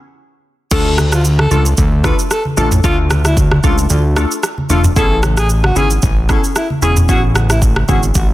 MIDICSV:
0, 0, Header, 1, 5, 480
1, 0, Start_track
1, 0, Tempo, 530973
1, 648, Time_signature, 4, 2, 24, 8
1, 7535, End_track
2, 0, Start_track
2, 0, Title_t, "Alto saxophone"
2, 0, Program_c, 0, 65
2, 652, Note_on_c, 0, 69, 100
2, 854, Note_off_c, 0, 69, 0
2, 1025, Note_on_c, 0, 65, 81
2, 1115, Note_off_c, 0, 65, 0
2, 1265, Note_on_c, 0, 69, 85
2, 1354, Note_off_c, 0, 69, 0
2, 1372, Note_on_c, 0, 69, 86
2, 1482, Note_off_c, 0, 69, 0
2, 1853, Note_on_c, 0, 71, 78
2, 1963, Note_off_c, 0, 71, 0
2, 2096, Note_on_c, 0, 69, 83
2, 2205, Note_off_c, 0, 69, 0
2, 2334, Note_on_c, 0, 69, 74
2, 2443, Note_off_c, 0, 69, 0
2, 2573, Note_on_c, 0, 65, 113
2, 2683, Note_off_c, 0, 65, 0
2, 2948, Note_on_c, 0, 64, 82
2, 3036, Note_off_c, 0, 64, 0
2, 3295, Note_on_c, 0, 65, 78
2, 3404, Note_off_c, 0, 65, 0
2, 4255, Note_on_c, 0, 65, 88
2, 4364, Note_off_c, 0, 65, 0
2, 4496, Note_on_c, 0, 69, 104
2, 4696, Note_off_c, 0, 69, 0
2, 4868, Note_on_c, 0, 68, 85
2, 4957, Note_off_c, 0, 68, 0
2, 5110, Note_on_c, 0, 66, 81
2, 5197, Note_off_c, 0, 66, 0
2, 5219, Note_on_c, 0, 68, 80
2, 5327, Note_off_c, 0, 68, 0
2, 5698, Note_on_c, 0, 69, 71
2, 5806, Note_off_c, 0, 69, 0
2, 5938, Note_on_c, 0, 64, 76
2, 6046, Note_off_c, 0, 64, 0
2, 6178, Note_on_c, 0, 68, 83
2, 6286, Note_off_c, 0, 68, 0
2, 6418, Note_on_c, 0, 66, 113
2, 6526, Note_off_c, 0, 66, 0
2, 6791, Note_on_c, 0, 64, 84
2, 6878, Note_off_c, 0, 64, 0
2, 7139, Note_on_c, 0, 66, 80
2, 7246, Note_off_c, 0, 66, 0
2, 7535, End_track
3, 0, Start_track
3, 0, Title_t, "Synth pluck"
3, 0, Program_c, 1, 84
3, 644, Note_on_c, 1, 57, 94
3, 646, Note_on_c, 1, 62, 81
3, 648, Note_on_c, 1, 65, 87
3, 650, Note_on_c, 1, 69, 100
3, 1314, Note_off_c, 1, 57, 0
3, 1315, Note_off_c, 1, 62, 0
3, 1316, Note_off_c, 1, 65, 0
3, 1317, Note_off_c, 1, 69, 0
3, 1366, Note_on_c, 1, 57, 76
3, 1366, Note_on_c, 1, 62, 70
3, 1369, Note_on_c, 1, 65, 74
3, 1370, Note_on_c, 1, 69, 85
3, 1589, Note_off_c, 1, 57, 0
3, 1590, Note_off_c, 1, 62, 0
3, 1591, Note_off_c, 1, 65, 0
3, 1592, Note_off_c, 1, 69, 0
3, 1845, Note_on_c, 1, 57, 81
3, 1846, Note_on_c, 1, 62, 73
3, 1848, Note_on_c, 1, 65, 74
3, 1849, Note_on_c, 1, 69, 88
3, 2032, Note_off_c, 1, 57, 0
3, 2033, Note_off_c, 1, 62, 0
3, 2034, Note_off_c, 1, 65, 0
3, 2034, Note_off_c, 1, 69, 0
3, 2323, Note_on_c, 1, 57, 81
3, 2325, Note_on_c, 1, 62, 74
3, 2327, Note_on_c, 1, 65, 74
3, 2328, Note_on_c, 1, 69, 89
3, 2511, Note_off_c, 1, 57, 0
3, 2512, Note_off_c, 1, 62, 0
3, 2513, Note_off_c, 1, 65, 0
3, 2514, Note_off_c, 1, 69, 0
3, 2566, Note_on_c, 1, 57, 87
3, 2568, Note_on_c, 1, 62, 85
3, 2570, Note_on_c, 1, 65, 86
3, 2571, Note_on_c, 1, 69, 96
3, 3235, Note_off_c, 1, 57, 0
3, 3236, Note_off_c, 1, 62, 0
3, 3237, Note_off_c, 1, 65, 0
3, 3237, Note_off_c, 1, 69, 0
3, 3286, Note_on_c, 1, 57, 80
3, 3289, Note_on_c, 1, 62, 72
3, 3290, Note_on_c, 1, 65, 74
3, 3291, Note_on_c, 1, 69, 84
3, 3510, Note_off_c, 1, 57, 0
3, 3511, Note_off_c, 1, 62, 0
3, 3512, Note_off_c, 1, 65, 0
3, 3512, Note_off_c, 1, 69, 0
3, 3766, Note_on_c, 1, 57, 79
3, 3769, Note_on_c, 1, 62, 73
3, 3770, Note_on_c, 1, 65, 75
3, 3772, Note_on_c, 1, 69, 91
3, 3953, Note_off_c, 1, 57, 0
3, 3954, Note_off_c, 1, 62, 0
3, 3955, Note_off_c, 1, 65, 0
3, 3956, Note_off_c, 1, 69, 0
3, 4247, Note_on_c, 1, 57, 79
3, 4248, Note_on_c, 1, 62, 77
3, 4250, Note_on_c, 1, 65, 77
3, 4252, Note_on_c, 1, 69, 89
3, 4433, Note_off_c, 1, 57, 0
3, 4434, Note_off_c, 1, 62, 0
3, 4435, Note_off_c, 1, 65, 0
3, 4436, Note_off_c, 1, 69, 0
3, 4487, Note_on_c, 1, 59, 89
3, 4488, Note_on_c, 1, 61, 87
3, 4490, Note_on_c, 1, 64, 83
3, 4492, Note_on_c, 1, 68, 97
3, 5156, Note_off_c, 1, 59, 0
3, 5156, Note_off_c, 1, 61, 0
3, 5157, Note_off_c, 1, 64, 0
3, 5158, Note_off_c, 1, 68, 0
3, 5206, Note_on_c, 1, 59, 79
3, 5207, Note_on_c, 1, 61, 69
3, 5208, Note_on_c, 1, 64, 74
3, 5211, Note_on_c, 1, 68, 86
3, 5430, Note_off_c, 1, 59, 0
3, 5430, Note_off_c, 1, 61, 0
3, 5431, Note_off_c, 1, 64, 0
3, 5432, Note_off_c, 1, 68, 0
3, 5688, Note_on_c, 1, 59, 76
3, 5690, Note_on_c, 1, 61, 73
3, 5693, Note_on_c, 1, 64, 73
3, 5694, Note_on_c, 1, 68, 90
3, 5874, Note_off_c, 1, 59, 0
3, 5875, Note_off_c, 1, 61, 0
3, 5876, Note_off_c, 1, 64, 0
3, 5877, Note_off_c, 1, 68, 0
3, 6168, Note_on_c, 1, 59, 82
3, 6168, Note_on_c, 1, 61, 75
3, 6170, Note_on_c, 1, 64, 74
3, 6173, Note_on_c, 1, 68, 88
3, 6354, Note_off_c, 1, 59, 0
3, 6354, Note_off_c, 1, 61, 0
3, 6355, Note_off_c, 1, 64, 0
3, 6356, Note_off_c, 1, 68, 0
3, 6408, Note_on_c, 1, 59, 95
3, 6409, Note_on_c, 1, 61, 82
3, 6412, Note_on_c, 1, 64, 86
3, 6413, Note_on_c, 1, 68, 100
3, 7076, Note_off_c, 1, 59, 0
3, 7077, Note_off_c, 1, 61, 0
3, 7078, Note_off_c, 1, 64, 0
3, 7079, Note_off_c, 1, 68, 0
3, 7127, Note_on_c, 1, 59, 78
3, 7129, Note_on_c, 1, 61, 72
3, 7130, Note_on_c, 1, 64, 69
3, 7133, Note_on_c, 1, 68, 84
3, 7350, Note_off_c, 1, 59, 0
3, 7351, Note_off_c, 1, 61, 0
3, 7352, Note_off_c, 1, 64, 0
3, 7353, Note_off_c, 1, 68, 0
3, 7535, End_track
4, 0, Start_track
4, 0, Title_t, "Analog synth bass"
4, 0, Program_c, 2, 38
4, 646, Note_on_c, 2, 38, 113
4, 1331, Note_off_c, 2, 38, 0
4, 1366, Note_on_c, 2, 37, 105
4, 1574, Note_off_c, 2, 37, 0
4, 1608, Note_on_c, 2, 38, 111
4, 1930, Note_off_c, 2, 38, 0
4, 2326, Note_on_c, 2, 33, 99
4, 2534, Note_off_c, 2, 33, 0
4, 2567, Note_on_c, 2, 38, 110
4, 3251, Note_off_c, 2, 38, 0
4, 3288, Note_on_c, 2, 37, 93
4, 3496, Note_off_c, 2, 37, 0
4, 3526, Note_on_c, 2, 38, 102
4, 3849, Note_off_c, 2, 38, 0
4, 4248, Note_on_c, 2, 28, 100
4, 4456, Note_off_c, 2, 28, 0
4, 4487, Note_on_c, 2, 33, 112
4, 5171, Note_off_c, 2, 33, 0
4, 5207, Note_on_c, 2, 32, 93
4, 5415, Note_off_c, 2, 32, 0
4, 5451, Note_on_c, 2, 33, 108
4, 5772, Note_off_c, 2, 33, 0
4, 6167, Note_on_c, 2, 28, 86
4, 6407, Note_on_c, 2, 33, 113
4, 6421, Note_off_c, 2, 28, 0
4, 7091, Note_off_c, 2, 33, 0
4, 7130, Note_on_c, 2, 32, 94
4, 7337, Note_off_c, 2, 32, 0
4, 7369, Note_on_c, 2, 33, 108
4, 7535, Note_off_c, 2, 33, 0
4, 7535, End_track
5, 0, Start_track
5, 0, Title_t, "Drums"
5, 645, Note_on_c, 9, 36, 117
5, 645, Note_on_c, 9, 49, 103
5, 645, Note_on_c, 9, 82, 79
5, 647, Note_on_c, 9, 64, 76
5, 735, Note_off_c, 9, 49, 0
5, 735, Note_off_c, 9, 82, 0
5, 736, Note_off_c, 9, 36, 0
5, 738, Note_off_c, 9, 64, 0
5, 886, Note_on_c, 9, 37, 100
5, 886, Note_on_c, 9, 82, 51
5, 888, Note_on_c, 9, 63, 72
5, 976, Note_off_c, 9, 82, 0
5, 977, Note_off_c, 9, 37, 0
5, 978, Note_off_c, 9, 63, 0
5, 1016, Note_on_c, 9, 37, 99
5, 1016, Note_on_c, 9, 82, 83
5, 1106, Note_off_c, 9, 37, 0
5, 1106, Note_off_c, 9, 82, 0
5, 1127, Note_on_c, 9, 82, 83
5, 1217, Note_off_c, 9, 82, 0
5, 1251, Note_on_c, 9, 63, 84
5, 1256, Note_on_c, 9, 37, 97
5, 1342, Note_off_c, 9, 63, 0
5, 1347, Note_off_c, 9, 37, 0
5, 1366, Note_on_c, 9, 82, 56
5, 1368, Note_on_c, 9, 63, 82
5, 1368, Note_on_c, 9, 64, 84
5, 1456, Note_off_c, 9, 82, 0
5, 1458, Note_off_c, 9, 63, 0
5, 1458, Note_off_c, 9, 64, 0
5, 1497, Note_on_c, 9, 82, 66
5, 1588, Note_off_c, 9, 82, 0
5, 1603, Note_on_c, 9, 82, 81
5, 1606, Note_on_c, 9, 64, 75
5, 1609, Note_on_c, 9, 36, 101
5, 1694, Note_off_c, 9, 82, 0
5, 1697, Note_off_c, 9, 64, 0
5, 1699, Note_off_c, 9, 36, 0
5, 1845, Note_on_c, 9, 37, 98
5, 1847, Note_on_c, 9, 82, 54
5, 1848, Note_on_c, 9, 36, 103
5, 1936, Note_off_c, 9, 37, 0
5, 1937, Note_off_c, 9, 82, 0
5, 1938, Note_off_c, 9, 36, 0
5, 1979, Note_on_c, 9, 82, 78
5, 2070, Note_off_c, 9, 82, 0
5, 2086, Note_on_c, 9, 82, 86
5, 2087, Note_on_c, 9, 37, 92
5, 2177, Note_off_c, 9, 37, 0
5, 2177, Note_off_c, 9, 82, 0
5, 2216, Note_on_c, 9, 63, 72
5, 2307, Note_off_c, 9, 63, 0
5, 2326, Note_on_c, 9, 82, 57
5, 2330, Note_on_c, 9, 63, 73
5, 2330, Note_on_c, 9, 64, 74
5, 2416, Note_off_c, 9, 82, 0
5, 2421, Note_off_c, 9, 63, 0
5, 2421, Note_off_c, 9, 64, 0
5, 2457, Note_on_c, 9, 45, 103
5, 2457, Note_on_c, 9, 82, 89
5, 2547, Note_off_c, 9, 45, 0
5, 2547, Note_off_c, 9, 82, 0
5, 2566, Note_on_c, 9, 82, 81
5, 2567, Note_on_c, 9, 36, 121
5, 2570, Note_on_c, 9, 64, 76
5, 2656, Note_off_c, 9, 82, 0
5, 2657, Note_off_c, 9, 36, 0
5, 2660, Note_off_c, 9, 64, 0
5, 2806, Note_on_c, 9, 82, 52
5, 2807, Note_on_c, 9, 37, 98
5, 2811, Note_on_c, 9, 63, 75
5, 2897, Note_off_c, 9, 82, 0
5, 2898, Note_off_c, 9, 37, 0
5, 2901, Note_off_c, 9, 63, 0
5, 2937, Note_on_c, 9, 37, 99
5, 2937, Note_on_c, 9, 82, 82
5, 3027, Note_off_c, 9, 37, 0
5, 3027, Note_off_c, 9, 82, 0
5, 3045, Note_on_c, 9, 36, 105
5, 3047, Note_on_c, 9, 82, 84
5, 3136, Note_off_c, 9, 36, 0
5, 3137, Note_off_c, 9, 82, 0
5, 3174, Note_on_c, 9, 63, 80
5, 3177, Note_on_c, 9, 37, 93
5, 3265, Note_off_c, 9, 63, 0
5, 3268, Note_off_c, 9, 37, 0
5, 3286, Note_on_c, 9, 82, 51
5, 3288, Note_on_c, 9, 36, 92
5, 3293, Note_on_c, 9, 63, 85
5, 3293, Note_on_c, 9, 64, 84
5, 3376, Note_off_c, 9, 82, 0
5, 3378, Note_off_c, 9, 36, 0
5, 3383, Note_off_c, 9, 63, 0
5, 3383, Note_off_c, 9, 64, 0
5, 3417, Note_on_c, 9, 82, 70
5, 3508, Note_off_c, 9, 82, 0
5, 3523, Note_on_c, 9, 82, 82
5, 3529, Note_on_c, 9, 64, 77
5, 3613, Note_off_c, 9, 82, 0
5, 3619, Note_off_c, 9, 64, 0
5, 3765, Note_on_c, 9, 37, 101
5, 3766, Note_on_c, 9, 82, 56
5, 3856, Note_off_c, 9, 37, 0
5, 3857, Note_off_c, 9, 82, 0
5, 3900, Note_on_c, 9, 82, 75
5, 3990, Note_off_c, 9, 82, 0
5, 4007, Note_on_c, 9, 82, 87
5, 4008, Note_on_c, 9, 37, 92
5, 4097, Note_off_c, 9, 82, 0
5, 4098, Note_off_c, 9, 37, 0
5, 4138, Note_on_c, 9, 63, 71
5, 4229, Note_off_c, 9, 63, 0
5, 4246, Note_on_c, 9, 82, 59
5, 4251, Note_on_c, 9, 63, 72
5, 4251, Note_on_c, 9, 64, 75
5, 4336, Note_off_c, 9, 82, 0
5, 4342, Note_off_c, 9, 63, 0
5, 4342, Note_off_c, 9, 64, 0
5, 4378, Note_on_c, 9, 45, 106
5, 4378, Note_on_c, 9, 82, 89
5, 4468, Note_off_c, 9, 45, 0
5, 4468, Note_off_c, 9, 82, 0
5, 4486, Note_on_c, 9, 82, 81
5, 4487, Note_on_c, 9, 36, 118
5, 4490, Note_on_c, 9, 64, 78
5, 4577, Note_off_c, 9, 36, 0
5, 4577, Note_off_c, 9, 82, 0
5, 4580, Note_off_c, 9, 64, 0
5, 4727, Note_on_c, 9, 82, 52
5, 4728, Note_on_c, 9, 37, 97
5, 4730, Note_on_c, 9, 63, 74
5, 4818, Note_off_c, 9, 82, 0
5, 4819, Note_off_c, 9, 37, 0
5, 4820, Note_off_c, 9, 63, 0
5, 4858, Note_on_c, 9, 37, 95
5, 4858, Note_on_c, 9, 82, 84
5, 4948, Note_off_c, 9, 37, 0
5, 4948, Note_off_c, 9, 82, 0
5, 4968, Note_on_c, 9, 82, 87
5, 5058, Note_off_c, 9, 82, 0
5, 5093, Note_on_c, 9, 63, 81
5, 5098, Note_on_c, 9, 37, 93
5, 5184, Note_off_c, 9, 63, 0
5, 5188, Note_off_c, 9, 37, 0
5, 5207, Note_on_c, 9, 82, 54
5, 5210, Note_on_c, 9, 63, 83
5, 5210, Note_on_c, 9, 64, 85
5, 5297, Note_off_c, 9, 82, 0
5, 5301, Note_off_c, 9, 63, 0
5, 5301, Note_off_c, 9, 64, 0
5, 5337, Note_on_c, 9, 82, 69
5, 5428, Note_off_c, 9, 82, 0
5, 5444, Note_on_c, 9, 82, 78
5, 5448, Note_on_c, 9, 64, 78
5, 5450, Note_on_c, 9, 36, 100
5, 5535, Note_off_c, 9, 82, 0
5, 5538, Note_off_c, 9, 64, 0
5, 5541, Note_off_c, 9, 36, 0
5, 5687, Note_on_c, 9, 37, 101
5, 5688, Note_on_c, 9, 82, 54
5, 5689, Note_on_c, 9, 36, 107
5, 5777, Note_off_c, 9, 37, 0
5, 5778, Note_off_c, 9, 82, 0
5, 5779, Note_off_c, 9, 36, 0
5, 5821, Note_on_c, 9, 82, 73
5, 5912, Note_off_c, 9, 82, 0
5, 5928, Note_on_c, 9, 82, 87
5, 5929, Note_on_c, 9, 37, 93
5, 6018, Note_off_c, 9, 82, 0
5, 6019, Note_off_c, 9, 37, 0
5, 6059, Note_on_c, 9, 63, 71
5, 6149, Note_off_c, 9, 63, 0
5, 6167, Note_on_c, 9, 82, 57
5, 6172, Note_on_c, 9, 63, 74
5, 6172, Note_on_c, 9, 64, 76
5, 6258, Note_off_c, 9, 82, 0
5, 6262, Note_off_c, 9, 63, 0
5, 6262, Note_off_c, 9, 64, 0
5, 6298, Note_on_c, 9, 82, 93
5, 6299, Note_on_c, 9, 45, 104
5, 6389, Note_off_c, 9, 45, 0
5, 6389, Note_off_c, 9, 82, 0
5, 6408, Note_on_c, 9, 36, 117
5, 6408, Note_on_c, 9, 82, 80
5, 6411, Note_on_c, 9, 64, 76
5, 6498, Note_off_c, 9, 36, 0
5, 6498, Note_off_c, 9, 82, 0
5, 6502, Note_off_c, 9, 64, 0
5, 6648, Note_on_c, 9, 82, 51
5, 6649, Note_on_c, 9, 37, 102
5, 6651, Note_on_c, 9, 63, 76
5, 6739, Note_off_c, 9, 37, 0
5, 6739, Note_off_c, 9, 82, 0
5, 6741, Note_off_c, 9, 63, 0
5, 6779, Note_on_c, 9, 37, 98
5, 6779, Note_on_c, 9, 82, 80
5, 6869, Note_off_c, 9, 37, 0
5, 6869, Note_off_c, 9, 82, 0
5, 6887, Note_on_c, 9, 36, 99
5, 6889, Note_on_c, 9, 82, 86
5, 6977, Note_off_c, 9, 36, 0
5, 6979, Note_off_c, 9, 82, 0
5, 7015, Note_on_c, 9, 63, 77
5, 7018, Note_on_c, 9, 37, 96
5, 7105, Note_off_c, 9, 63, 0
5, 7108, Note_off_c, 9, 37, 0
5, 7127, Note_on_c, 9, 82, 54
5, 7129, Note_on_c, 9, 36, 96
5, 7133, Note_on_c, 9, 63, 84
5, 7133, Note_on_c, 9, 64, 86
5, 7217, Note_off_c, 9, 82, 0
5, 7219, Note_off_c, 9, 36, 0
5, 7223, Note_off_c, 9, 63, 0
5, 7223, Note_off_c, 9, 64, 0
5, 7259, Note_on_c, 9, 82, 71
5, 7349, Note_off_c, 9, 82, 0
5, 7364, Note_on_c, 9, 82, 82
5, 7369, Note_on_c, 9, 64, 78
5, 7370, Note_on_c, 9, 36, 100
5, 7454, Note_off_c, 9, 82, 0
5, 7460, Note_off_c, 9, 64, 0
5, 7461, Note_off_c, 9, 36, 0
5, 7535, End_track
0, 0, End_of_file